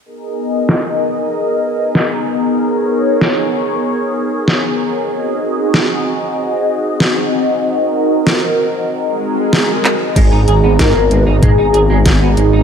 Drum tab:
CC |--------|--------|--------|--------|
HH |--------|--------|--------|--------|
CP |--------|--------|--------|-------x|
SD |--o---o-|--o---o-|--o---o-|--o---o-|
T2 |--------|--------|--------|--------|
BD |--------|--------|--------|--------|

CC |x-------|
HH |xxxxxxxx|
CP |--------|
SD |--o---o-|
T2 |----o---|
BD |o-o-o-o-|